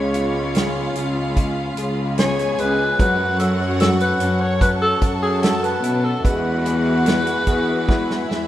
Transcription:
0.00 0.92 C#2 loud
0.00 2.55 C#3 medium
0.00 3.00 C#3 medium
0.00 1.32 G#3 medium
0.00 2.14 F4 medium
0.00 0.96 G#4 medium
0.00 2.96 G#4 medium
0.00 1.77 C#5 medium
0.00 6.21 C#5 medium
0.00 2.14 F5 medium
0.00 2.95 F5 medium
0.00 2.95 B5 medium
0.14 2.17 B3 medium
0.14 0.95 F4 soft
0.14 closed hi-hat medium
0.55 1.76 F4 medium
0.55 1.77 G#4 medium
0.55 snare loud
0.55 closed hi-hat medium
0.96 1.73 C#2 medium
0.96 2.55 F4 medium
0.96 3.08 G#4 medium
0.96 closed hi-hat medium
1.37 2.99 G#3 medium
1.37 kick medium
1.37 closed hi-hat medium
1.77 2.55 C#2 medium
1.77 2.57 F4 medium
1.77 2.96 G#4 medium
1.77 closed hi-hat medium
2.18 3.07 B3 medium
2.18 2.98 G#4 medium
2.18 2.61 C#5 medium
2.18 2.98 G#5 medium
2.18 snare loud
2.18 closed hi-hat medium
2.39 closed hi-hat soft
2.58 2.97 C#2 medium
2.58 2.99 G#3 medium
2.58 3.07 F4 medium
2.58 2.99 B4 loud
2.58 closed hi-hat medium
2.99 4.16 F#2 loud
2.99 6.25 F#3 medium
2.99 4.59 F#3 medium
2.99 4.58 F#4 medium
2.99 6.21 A4 medium
2.99 3.37 B4 medium
2.99 4.57 F#5 loud
2.99 6.22 F#5 medium
2.99 6.22 C#6 medium
2.99 kick loud
2.99 closed hi-hat medium
3.40 4.60 C#4 medium
3.40 4.19 C#4 soft
3.40 3.62 A4 medium
3.40 closed hi-hat medium
3.61 3.80 C#5 medium
3.80 5.39 F#4 medium
3.80 5.00 F#4 medium
3.80 3.90 A4 medium
3.80 snare loud
3.80 closed hi-hat medium
4.00 4.42 B4 loud
4.00 closed hi-hat soft
4.20 4.98 F#2 medium
4.20 5.80 C#4 medium
4.20 6.33 A4 medium
4.20 closed hi-hat medium
4.41 4.61 C#5 medium
4.61 6.21 F#3 medium
4.61 5.41 C#4 medium
4.61 6.21 A4 medium
4.61 4.71 B4 loud
4.61 6.21 A5 medium
4.61 kick loud
4.61 closed hi-hat medium
4.82 4.98 A4 medium
5.02 5.80 F#2 loud
5.02 5.83 F#4 medium
5.02 kick medium
5.02 closed hi-hat medium
5.23 5.45 G#4 medium
5.43 6.33 C#4 medium
5.43 6.22 F#4 medium
5.43 5.65 A4 medium
5.43 snare loud
5.43 closed hi-hat medium
5.63 6.06 B4 medium
5.63 closed hi-hat soft
5.83 6.22 B2 medium
5.83 6.04 E4 medium
5.83 closed hi-hat medium
6.04 6.33 F#4 medium
6.04 6.24 A4 medium
6.24 7.44 E2 loud
6.24 8.47 G#3 medium
6.24 8.26 F#4 medium
6.24 8.47 G#4 medium
6.24 8.47 B4 medium
6.24 8.47 E5 medium
6.24 8.26 F#5 medium
6.24 8.47 B5 medium
6.24 kick loud
6.24 closed hi-hat medium
6.65 8.26 B3 medium
6.65 8.47 B3 medium
6.65 closed hi-hat medium
7.06 7.87 E4 medium
7.06 8.28 E4 medium
7.06 snare medium
7.06 closed hi-hat medium
7.27 closed hi-hat medium
7.47 8.26 E2 medium
7.47 8.47 G#4 medium
7.47 kick medium
7.47 closed hi-hat medium
7.88 8.47 G#3 medium
7.88 8.47 E4 medium
7.88 kick loud
7.88 snare medium
8.11 snare medium
8.29 8.47 E2 medium
8.29 8.47 E4 medium
8.29 8.47 E5 medium
8.29 snare medium

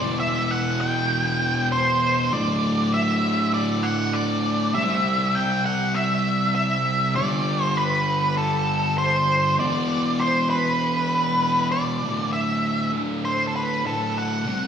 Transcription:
0.00 2.30 E2 medium
0.00 2.31 B2 medium
0.00 2.34 E3 medium
0.00 0.19 D5 loud
0.20 0.51 E5 loud
0.51 0.81 F#5 loud
0.81 1.68 G5 loud
1.72 2.34 C5 medium
2.31 4.72 D2 medium
2.31 4.73 A2 medium
2.31 4.74 D3 medium
2.31 2.94 D5 loud
2.94 3.53 E5 loud
3.54 3.85 D5 medium
3.83 4.14 F#5 medium
4.13 4.74 D5 medium
4.75 7.15 C3 medium
4.75 7.17 G3 medium
4.75 5.37 E5 loud
4.79 7.17 C4 medium
5.35 5.65 G5 loud
5.66 5.97 F#5 medium
5.95 6.54 E5 loud
6.55 7.15 E5 loud
7.16 9.57 G2 medium
7.16 9.58 D3 medium
7.16 9.59 G3 medium
7.16 7.64 D5 loud
7.64 7.79 C5 loud
7.77 8.37 B4 medium
8.37 8.98 A4 medium
8.98 9.55 C5 medium
9.58 12.00 E2 medium
9.58 12.01 B2 loud
9.58 12.02 E3 loud
9.58 10.22 D5 loud
10.20 10.49 C5 medium
10.50 11.68 B4 medium
11.72 12.32 D5 medium
12.01 12.91 D2 medium
12.01 12.92 A2 medium
12.01 12.91 D3 medium
12.33 12.90 E5 medium
12.92 13.82 D2 medium
12.92 13.84 A2 medium
12.92 13.83 D3 medium
13.25 13.47 C5 medium
13.47 13.55 A4 medium
13.56 13.86 B4 medium
13.83 14.44 D2 medium
13.83 14.45 A2 medium
13.83 14.17 A4 medium
13.87 14.46 D3 medium
14.18 14.67 F#5 medium
14.45 14.67 C3 medium
14.45 14.67 G3 medium
14.45 14.67 C4 medium

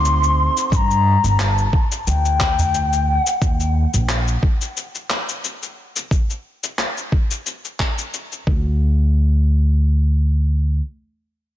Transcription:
0.00 0.47 D2 loud
0.00 0.65 C4 medium
0.00 0.65 D#4 medium
0.00 0.66 F#4 medium
0.00 0.67 A4 loud
0.00 0.72 C6 loud
0.05 shaker medium
0.23 shaker soft
0.57 shaker medium
0.72 1.14 G2 loud
0.72 1.41 A#5 loud
0.72 0.77 C6 loud
0.72 kick loud
0.72 shaker medium
0.91 shaker soft
1.24 1.65 G1 medium
1.24 shaker medium
1.40 1.80 A5 medium
1.40 clap medium
1.40 shaker medium
1.58 shaker soft
1.73 kick loud
1.92 shaker medium
2.07 3.17 D2 medium
2.07 3.10 G5 medium
2.07 shaker medium
2.25 shaker soft
2.40 kick medium
2.40 clap medium
2.58 udu medium
2.58 shaker medium
2.74 shaker medium
2.93 shaker soft
3.08 3.42 F#5 medium
3.26 shaker medium
3.42 3.84 D#2 loud
3.42 kick loud
3.42 shaker medium
3.60 shaker soft
3.94 4.35 A#1 medium
3.94 shaker medium
4.09 clap medium
4.09 shaker medium
4.28 shaker soft
4.43 kick loud
4.61 shaker medium
4.77 shaker medium
4.95 shaker soft
5.10 clap medium
5.29 shaker medium
5.44 shaker medium
5.63 shaker soft
5.96 shaker medium
6.11 kick loud
6.11 shaker soft
6.30 shaker soft
6.64 shaker medium
6.79 clap medium
6.79 shaker soft
6.97 shaker soft
7.12 kick loud
7.31 shaker medium
7.46 shaker medium
7.65 shaker soft
7.80 kick medium
7.80 clap medium
7.98 shaker medium
8.14 shaker medium
8.32 shaker soft
8.47 10.79 D2 medium
8.47 kick medium

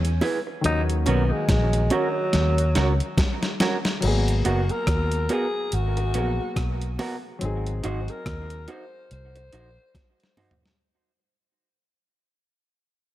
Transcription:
0.00 0.20 E2 medium
0.00 0.59 E3 medium
0.00 0.60 G#3 medium
0.00 0.60 B3 medium
0.00 0.22 C#4 loud
0.00 0.61 C#4 medium
0.00 0.62 G#4 medium
0.05 closed hi-hat medium
0.21 0.38 E4 medium
0.21 0.38 G#4 medium
0.21 0.38 B4 medium
0.21 open hi-hat medium
0.21 high bongo medium
0.21 low bongo medium
0.47 muted clean electric guitar stroke soft
0.61 1.05 D#2 loud
0.61 3.97 D#3 medium
0.61 3.98 F#3 medium
0.61 3.98 A#3 medium
0.61 closed hi-hat medium
0.66 3.99 C#4 medium
0.66 0.82 D#4 loud
0.66 4.00 F#4 medium
0.90 closed hi-hat medium
1.06 1.30 B1 loud
1.06 1.33 B3 loud
1.06 1.22 C#4 loud
1.06 1.23 F#4 loud
1.06 1.23 A#4 medium
1.06 closed hi-hat medium
1.06 high bongo medium
1.32 1.49 G#3 medium
1.49 1.89 A#1 loud
1.49 1.93 G#3 loud
1.49 kick loud
1.49 snare loud
1.49 closed hi-hat medium
1.49 high bongo medium
1.73 closed hi-hat medium
1.90 3.18 F#3 loud
1.90 2.07 C#4 medium
1.90 2.07 F#4 loud
1.90 2.08 A#4 loud
1.90 closed hi-hat medium
1.90 high bongo medium
1.90 low bongo medium
2.33 2.74 D#2 loud
2.33 snare medium
2.33 closed hi-hat loud
2.58 closed hi-hat medium
2.75 3.00 C#2 loud
2.75 2.91 C#4 medium
2.75 2.92 F#4 loud
2.75 2.92 A#4 loud
2.75 snare medium
2.75 closed hi-hat medium
2.75 high bongo medium
3.00 closed hi-hat soft
3.18 kick loud
3.18 snare loud
3.18 closed hi-hat medium
3.18 high bongo medium
3.43 snare medium
3.43 closed hi-hat soft
3.60 3.76 C#4 medium
3.60 3.77 F#4 medium
3.60 3.77 A#4 loud
3.60 snare loud
3.60 closed hi-hat medium
3.60 high bongo medium
3.60 low bongo medium
3.85 snare loud
3.85 closed hi-hat soft
4.01 4.43 G#1 loud
4.01 6.09 F#3 medium
4.01 6.10 A#3 medium
4.01 closed hi-hat medium
4.01 crash medium
4.05 6.11 B3 medium
4.05 6.12 G#4 medium
4.28 closed hi-hat soft
4.45 4.69 F#1 medium
4.45 4.61 B3 medium
4.45 4.61 F#4 medium
4.45 4.73 F#4 medium
4.45 4.62 A#4 medium
4.45 closed hi-hat medium
4.69 5.30 A#4 loud
4.69 closed hi-hat soft
4.87 5.27 D#2 medium
4.87 kick loud
4.87 cross-stick loud
4.87 closed hi-hat medium
4.87 high bongo medium
5.12 closed hi-hat medium
5.29 5.45 B3 medium
5.29 5.46 F#4 medium
5.29 5.75 G#4 loud
5.29 5.46 A#4 medium
5.29 closed hi-hat medium
5.29 high bongo medium
5.72 6.12 G#1 medium
5.72 7.00 F#4 loud
5.72 closed hi-hat medium
5.97 muted clean electric guitar stroke soft
5.97 closed hi-hat soft
6.14 6.38 A#1 medium
6.14 7.37 F#3 medium
6.14 7.42 A#3 medium
6.14 6.30 B3 medium
6.14 7.42 B3 soft
6.14 6.31 F#4 medium
6.14 7.43 G#4 medium
6.14 6.31 A#4 medium
6.14 closed hi-hat medium
6.56 6.97 B1 medium
6.56 kick loud
6.56 cross-stick loud
6.56 closed hi-hat medium
6.56 high bongo medium
6.82 closed hi-hat soft
6.99 7.15 B3 medium
6.99 7.15 F#4 medium
6.99 7.15 A#4 medium
6.99 open hi-hat medium
6.99 high bongo medium
6.99 low bongo medium
7.39 7.82 G#1 loud
7.39 10.74 F#3 medium
7.39 10.75 C4 medium
7.39 closed hi-hat medium
7.43 10.76 D#4 medium
7.43 10.77 G#4 medium
7.67 closed hi-hat soft
7.84 8.07 G#1 medium
7.84 7.99 D#4 medium
7.84 8.12 F#4 medium
7.84 8.00 F#4 medium
7.84 8.00 C5 medium
7.84 closed hi-hat medium
8.08 8.72 A#4 loud
8.08 closed hi-hat soft
8.26 8.66 D#2 medium
8.26 kick loud
8.26 cross-stick loud
8.26 closed hi-hat medium
8.26 high bongo medium
8.50 closed hi-hat medium
8.68 8.84 D#4 medium
8.68 8.84 F#4 medium
8.68 8.85 C5 medium
8.68 9.12 C5 loud
8.68 closed hi-hat medium
8.68 high bongo medium
9.11 9.51 C2 loud
9.11 10.34 C5 loud
9.11 closed hi-hat medium
9.36 muted clean electric guitar stroke soft
9.36 closed hi-hat soft
9.53 9.77 A#1 medium
9.53 9.68 D#4 medium
9.53 9.69 F#4 medium
9.53 9.69 C5 medium
9.53 closed hi-hat medium
9.95 kick loud
9.95 snare medium
9.95 closed hi-hat medium
9.95 high bongo medium
10.20 snare medium
10.20 closed hi-hat soft
10.37 10.53 D#4 medium
10.37 10.54 F#4 medium
10.37 10.54 C5 medium
10.37 mid tom medium
10.37 open hi-hat medium
10.37 high bongo medium
10.37 low bongo medium
10.51 floor tom loud
10.62 muted clean electric guitar stroke medium
10.62 snare medium

